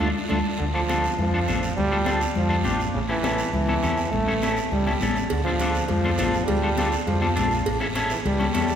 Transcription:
0.00 fretless electric bass D2, clean electric guitar D4 F4 A4, low conga
0.29 fretless electric bass D2, transistor combo organ A3 D4 F4, clean electric guitar D4 F4 A4, low conga, long guiro
0.58 fretless electric bass D2, trombone D3, long guiro
0.74 trombone F3, clean electric guitar D4 F4 A4
0.89 clean electric guitar D4 F4 A4, high conga, short guiro
1.04 short guiro
1.18 fretless electric bass F2, trombone F3, high conga, low conga, long guiro
1.34 clean electric guitar D4 F4 A4
1.48 fretless electric bass A1, clean electric guitar D4 F4 A4, high conga, short guiro
1.63 short guiro
1.77 fretless electric bass D2, trombone G3, high conga, low conga, long guiro
1.91 clean electric guitar D4 F4 A4
2.06 clean electric guitar D4 F4 A4, high conga, short guiro
2.21 short guiro
2.35 fretless electric bass F2, trombone F3, high conga, low conga, long guiro
2.49 clean electric guitar D4 F4 A4
2.64 fretless electric bass A1, clean electric guitar D4 F4 G4, high conga, short guiro
2.80 short guiro
2.94 fretless electric bass A1, trombone C#3, high conga, long guiro
3.09 trombone E3, clean electric guitar C#4 E4 A4, high conga
3.23 clean electric guitar C#4 E4 A4, high conga, short guiro
3.38 short guiro
3.53 fretless electric bass C#2, trombone E3, high conga, low conga, long guiro
3.68 clean electric guitar C#4 E4 A4, high conga
3.83 fretless electric bass E2, clean electric guitar C#4 E4 A4, high conga, short guiro
3.97 short guiro
4.11 fretless electric bass A1, trombone A3, high conga, low conga, long guiro
4.27 clean electric guitar C#4 E4 A4
4.42 clean electric guitar C#4 E4 A4, high conga, short guiro
4.56 short guiro
4.71 fretless electric bass C#2, trombone G3, high conga, low conga, long guiro
4.86 clean electric guitar C#4 E4 A4, high conga
5.01 fretless electric bass A1, clean electric guitar C#4 E4 A4, high conga, low conga, short guiro
5.16 short guiro
5.30 fretless electric bass D2, trombone D3, cowbell, high conga, long guiro
5.44 trombone F3, clean electric guitar D4 F4 A4, high conga
5.59 clean electric guitar D4 F4 A4, cowbell, high conga, short guiro
5.75 short guiro
5.87 fretless electric bass F2, trombone F3, cowbell, high conga, low conga, long guiro
6.04 clean electric guitar D4 F4 A4, high conga
6.18 fretless electric bass A1, clean electric guitar D4 F4 A4, cowbell, high conga, low timbale, short guiro
6.33 short guiro
6.44 fretless electric bass D2, trombone G3, cowbell, long guiro
6.49 high conga, low conga
6.63 clean electric guitar D4 F4 A4
6.77 clean electric guitar D4 F4 A4, cowbell, high conga, short guiro
6.92 short guiro
7.06 fretless electric bass F2, trombone F3, cowbell, high conga, low conga, long guiro
7.21 clean electric guitar D4 F4 A4, high conga
7.36 fretless electric bass A#1, clean electric guitar D4 F4 A4, cowbell, high conga, low conga, short guiro
7.51 short guiro
7.65 fretless electric bass A1, cowbell, high conga, long guiro
7.80 clean electric guitar C#4 E4 A4, high conga
7.95 clean electric guitar C#4 E4 A4, cowbell, high conga, short guiro
8.10 trombone E3, short guiro
8.24 fretless electric bass C#2, trombone G3, cowbell, high conga, low conga, long guiro
8.39 clean electric guitar C#4 E4 A4, high conga
8.53 fretless electric bass E2, trombone G3, clean electric guitar C#4 E4 A4, cowbell, high conga, short guiro
8.68 short guiro

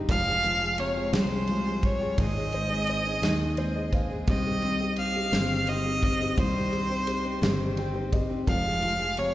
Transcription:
Already playing: upright piano G2 G3 D#4 G4 D#5 A#5
0.09 fingered electric bass F1, steel-string acoustic guitar F2 C3 F3 G#3 F4 G4, upright piano F3, violin F5, kick, ride
0.27 upright piano G#4
0.43 steel-string acoustic guitar F3 G#3 F4 G4, upright piano F3, ride
0.60 steel-string acoustic guitar F3 G#3 F4 G4, upright piano G#4
0.78 upright piano C3, violin C#5, ride
0.95 steel-string acoustic guitar F3 G#3 F4 G4, upright piano G#4
1.13 fingered electric bass C2, steel-string acoustic guitar F2 C3 F3 G#3 F4 G4, upright piano G#3, violin C5, snare, ride
1.32 upright piano G#4
1.47 steel-string acoustic guitar F3 G#3 F4 G4, upright piano F3, ride
1.65 steel-string acoustic guitar F3 G#3 F4 G4, upright piano G#4
1.83 violin C#5, kick, ride
2.00 steel-string acoustic guitar F3 G#3 F4 G4, upright piano G#4
2.18 fingered electric bass G#1, steel-string acoustic guitar G#2 D#3 G#3 C4 D#4 G#4, upright piano G#3, violin D#5, kick, ride
2.37 upright piano G#4
2.52 steel-string acoustic guitar G#3 C4 D#4 G#4, upright piano C5, ride
2.70 steel-string acoustic guitar G#3 C4 D#4 G#4, upright piano G#4
2.87 upright piano C5, ride
3.05 steel-string acoustic guitar G#3 C4 D#4 G#4, upright piano G#4
3.22 fingered electric bass D#2, steel-string acoustic guitar G#2 D#3 G#3 C4 D#4 G#4, upright piano D#4, snare, ride
3.41 upright piano G#4
3.57 steel-string acoustic guitar G#3 C4 D#4 G#4, upright piano C5, ride
3.75 steel-string acoustic guitar G#3 C4 D#4 G#4, upright piano G#4 D#5
3.92 upright piano C5 F5, kick, ride
4.09 steel-string acoustic guitar G#3 C4 D#4 G#4, upright piano G#4
4.27 fingered electric bass C2, steel-string acoustic guitar C3 D#3 C4 D#4 G4, upright piano C4, violin D#5, kick, ride
4.47 upright piano G4
4.62 steel-string acoustic guitar D#3 C4 D#4 G4, upright piano C4, ride
4.79 steel-string acoustic guitar C4 D#4 G4, upright piano G4
4.96 upright piano C4, violin F5, ride
5.14 steel-string acoustic guitar C4 D#4 G4, upright piano G4
5.32 fingered electric bass G1, steel-string acoustic guitar C3 D#3 C4 D#4 G4, upright piano C4, snare, ride
5.51 upright piano G4
5.67 steel-string acoustic guitar D#3 C4 D#4 G4, upright piano C4, violin D#5, ride
5.84 steel-string acoustic guitar C4 D#4 G4, upright piano G4
6.03 upright piano C4, kick, ride
6.19 steel-string acoustic guitar C4 D#4 G4, upright piano G4
6.37 fingered electric bass C2, steel-string acoustic guitar C3 D#3 C4 D#4 G4, upright piano G3, violin C5, kick, ride
6.56 upright piano C4
6.71 steel-string acoustic guitar D#3 C4 D#4 G4, upright piano G4, ride
6.89 upright piano C4, steel-string acoustic guitar C4 D#4 G4
7.07 upright piano G4, ride
7.24 upright piano C4, steel-string acoustic guitar C4 D#4 G4
7.41 fingered electric bass G1, steel-string acoustic guitar C3 D#3 C4 D#4 G4, upright piano G4, snare, ride
7.61 upright piano C4
7.77 steel-string acoustic guitar D#3 C4 D#4 G4, upright piano G4 G5, ride
7.94 upright piano C4, steel-string acoustic guitar C4 D#4 G4
8.13 upright piano G4 D#5, kick, ride
8.29 upright piano C4, steel-string acoustic guitar C4 D#4 G4
8.46 fingered electric bass F1, steel-string acoustic guitar F2 C3 F3 G#3 F4 G4, upright piano F3, violin F5, kick, ride
8.65 upright piano G#4
8.82 steel-string acoustic guitar F3 G#3 F4 G4, upright piano F3, ride
8.99 steel-string acoustic guitar F3 G#3 F4 G4, upright piano G#4
9.17 upright piano C3, violin C#5, ride

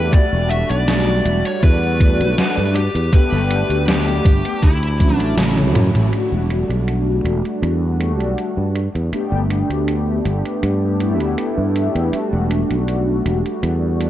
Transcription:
Already playing: analog polysynth A3 B3 D4 E4, lead electric guitar B4
0.12 analog polysynth G3 A3 D4 F#4, lead electric guitar D5, muted fretless electric bass stroke, kick, closed hi-hat
0.33 fretless electric bass E1
0.50 lead electric guitar E5, closed hi-hat
0.70 fretless electric bass B1, lead electric guitar D5, closed hi-hat
0.88 snare, closed hi-hat
1.25 fretless electric bass E1, closed hi-hat
1.45 lead electric guitar C#5, closed hi-hat
1.63 fretless electric bass E2, lead electric guitar B4, kick, closed hi-hat
2.00 analog polysynth G3 A3 D4 F#4, kick, closed hi-hat
2.20 fretless electric bass B1, closed hi-hat
2.38 snare, closed hi-hat
2.57 fretless electric bass G2
2.75 lead electric guitar G4, closed hi-hat
2.95 fretless electric bass E2, closed hi-hat
3.12 analog polysynth A3 B3 D4 G4, lead electric guitar B4, muted fretless electric bass stroke, kick, closed hi-hat
3.32 fretless electric bass G1, snare
3.51 closed hi-hat
3.69 fretless electric bass D2, closed hi-hat
3.88 lead electric guitar G4, snare, closed hi-hat
4.08 closed hi-hat
4.25 fretless electric bass G1, kick, closed hi-hat
4.45 closed hi-hat
4.63 fretless electric bass D2, lead electric guitar E4, kick, closed hi-hat
4.83 closed hi-hat
4.99 analog polysynth F#3 A3 C#4 E4, kick, closed hi-hat, high tom
5.15 lead electric guitar D4
5.20 fretless electric bass A1, closed hi-hat
5.37 fretless electric bass A1, snare, closed hi-hat, mid tom
5.58 closed hi-hat, mid tom
5.75 fretless electric bass F#2, closed hi-hat, mid tom
5.95 fretless electric bass A1, closed hi-hat, mid tom
6.11 analog polysynth G3 A3 D4 F#4, closed hi-hat
6.32 fretless electric bass E1
6.50 closed hi-hat
6.69 fretless electric bass B1, closed hi-hat
6.88 closed hi-hat
7.24 fretless electric bass E1, closed hi-hat
7.45 closed hi-hat
7.62 fretless electric bass E2, closed hi-hat
8.00 analog polysynth G3 A3 D4 F#4, closed hi-hat
8.20 fretless electric bass B1, closed hi-hat
8.38 closed hi-hat
8.57 fretless electric bass G2
8.75 closed hi-hat
8.95 fretless electric bass E2, closed hi-hat
9.12 analog polysynth A3 B3 D4 G4, muted fretless electric bass stroke, closed hi-hat
9.32 fretless electric bass G1
9.50 closed hi-hat
9.69 fretless electric bass D2, closed hi-hat
9.88 closed hi-hat
10.25 fretless electric bass G1, closed hi-hat
10.45 closed hi-hat
10.63 fretless electric bass G2, closed hi-hat
10.99 analog polysynth A3 B3 D4 E4, closed hi-hat
11.20 fretless electric bass D2, closed hi-hat
11.38 closed hi-hat
11.58 fretless electric bass G2
11.76 closed hi-hat
11.95 fretless electric bass E2, closed hi-hat
12.11 analog polysynth G3 A3 D4 F#4, muted fretless electric bass stroke, closed hi-hat
12.33 fretless electric bass E1
12.51 closed hi-hat
12.70 fretless electric bass B1, closed hi-hat
12.88 closed hi-hat
13.26 fretless electric bass E1, closed hi-hat
13.46 closed hi-hat
13.63 fretless electric bass E2, closed hi-hat
14.00 analog polysynth G3 A3 D4 F#4, closed hi-hat

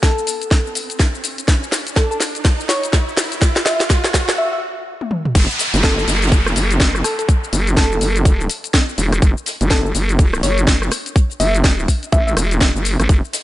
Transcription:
Already playing: riser
0.03 soft synth lead A4, kick, snare, closed hi-hat, shaker
0.18 shaker
0.26 closed hi-hat, open hi-hat, shaker
0.42 closed hi-hat, shaker
0.51 kick, snare, closed hi-hat, shaker
0.66 closed hi-hat, shaker
0.75 closed hi-hat, open hi-hat, shaker
0.90 closed hi-hat, shaker
0.99 kick, snare, closed hi-hat, shaker
1.15 shaker
1.24 closed hi-hat, open hi-hat, shaker
1.38 closed hi-hat, shaker
1.48 kick, snare, closed hi-hat, shaker
1.63 shaker
1.72 snare, closed hi-hat, open hi-hat, shaker
1.87 closed hi-hat, shaker
1.96 soft synth lead A4, kick, snare, closed hi-hat, shaker
2.11 soft synth lead A4, shaker
2.20 snare, closed hi-hat, open hi-hat, shaker
2.35 closed hi-hat, shaker
2.44 kick, snare, closed hi-hat, open hi-hat, shaker
2.60 shaker
2.69 soft synth lead C#5, snare, closed hi-hat, open hi-hat, shaker
2.83 closed hi-hat, shaker
2.93 kick, snare, closed hi-hat, shaker
3.08 shaker
3.16 snare, closed hi-hat, open hi-hat, shaker
3.32 closed hi-hat, shaker
3.41 kick, snare, closed hi-hat, shaker
3.56 snare, closed hi-hat, shaker
3.66 soft synth lead E5, snare, closed hi-hat, open hi-hat, shaker
3.80 snare, closed hi-hat, shaker
3.90 kick, snare, closed hi-hat, shaker
4.04 snare, shaker
4.14 kick, snare, closed hi-hat, open hi-hat, shaker
4.29 snare, closed hi-hat, shaker
4.38 soft synth lead E5
4.53 soft synth lead E5
5.01 high tom
5.11 mid tom
5.25 mid tom
5.35 wobble bass F#1, kick, closed hi-hat, crash, downlifter, shaker
5.50 shaker
5.59 snare, closed hi-hat, open hi-hat, shaker
5.74 wobble bass F#1, closed hi-hat, shaker
5.83 soft synth lead A4, kick, snare, closed hi-hat, shaker
5.98 soft synth lead A4, shaker
6.07 wobble bass F#1, snare, closed hi-hat, open hi-hat, shaker
6.14 snare, closed hi-hat
6.22 snare, closed hi-hat, shaker
6.27 snare, closed hi-hat
6.31 kick, closed hi-hat, open hi-hat, shaker
6.46 cross-stick, shaker
6.56 wobble bass F#1, closed hi-hat, open hi-hat, shaker
6.71 closed hi-hat, shaker
6.80 kick, snare, closed hi-hat, shaker
6.95 cross-stick, shaker
7.04 soft synth lead A4, cross-stick, closed hi-hat, open hi-hat, shaker
7.19 soft synth lead A4, closed hi-hat, shaker
7.28 kick, closed hi-hat, shaker
7.44 closed hi-hat, shaker
7.53 wobble bass F#1, closed hi-hat, open hi-hat, shaker
7.67 closed hi-hat, shaker
7.77 soft synth lead A4, kick, snare, closed hi-hat, shaker
7.92 shaker
8.01 wobble bass F#1, closed hi-hat, open hi-hat, shaker
8.16 closed hi-hat, shaker
8.25 kick, closed hi-hat, shaker
8.40 closed hi-hat, shaker
8.49 closed hi-hat, open hi-hat, shaker
8.64 closed hi-hat, shaker
8.74 kick, snare, closed hi-hat, shaker
8.89 shaker
8.98 wobble bass E1, closed hi-hat, open hi-hat, shaker
9.12 cross-stick, closed hi-hat, shaker
9.22 wobble bass F#1, kick, closed hi-hat, shaker
9.37 shaker
9.46 snare, closed hi-hat, open hi-hat, shaker
9.61 wobble bass F#1, closed hi-hat, shaker
9.70 soft synth lead A4, kick, snare, closed hi-hat, shaker
9.85 soft synth lead A4, shaker
9.95 wobble bass F#1, closed hi-hat, open hi-hat, shaker
10.09 closed hi-hat, shaker
10.18 kick, closed hi-hat, open hi-hat, shaker
10.33 cross-stick, shaker
10.43 wobble bass F#1, soft synth lead C#5, closed hi-hat, open hi-hat, shaker
10.58 closed hi-hat, shaker
10.67 kick, snare, closed hi-hat, shaker
10.82 cross-stick, shaker
10.90 cross-stick, closed hi-hat, open hi-hat, shaker
11.06 closed hi-hat, shaker
11.16 kick, closed hi-hat, shaker
11.29 closed hi-hat, shaker
11.40 wobble bass F#1, soft synth lead E5, closed hi-hat, open hi-hat, shaker
11.55 closed hi-hat, shaker
11.64 kick, snare, closed hi-hat, shaker
11.79 shaker
11.88 kick, closed hi-hat, open hi-hat, shaker
12.03 closed hi-hat, shaker
12.12 wobble bass A1, soft synth lead E5, kick, closed hi-hat, shaker
12.27 soft synth lead E5, closed hi-hat, shaker
12.37 wobble bass E1, cross-stick, closed hi-hat, open hi-hat, shaker
12.51 closed hi-hat, shaker
12.61 kick, snare, closed hi-hat, shaker
12.75 wobble bass F#1, shaker
12.85 closed hi-hat, open hi-hat, shaker
13.00 wobble bass G#1, cross-stick, closed hi-hat, shaker
13.09 wobble bass F#1, kick, closed hi-hat, ride, shaker
13.25 shaker
13.33 snare, closed hi-hat, open hi-hat, ride, shaker

